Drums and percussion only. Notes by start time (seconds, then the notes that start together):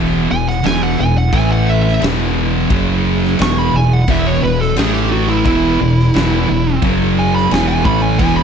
0.50 snare
0.64 snare, crash
1.33 kick, crash
1.88 snare
2.02 snare, crash
2.70 kick, crash
3.25 snare
3.39 snare, crash
4.08 kick, crash
4.62 snare
4.76 snare, crash
5.46 kick, crash
6.00 snare
6.14 snare, crash
6.82 kick, crash
7.37 snare
7.51 snare, crash
7.85 kick
8.19 kick, crash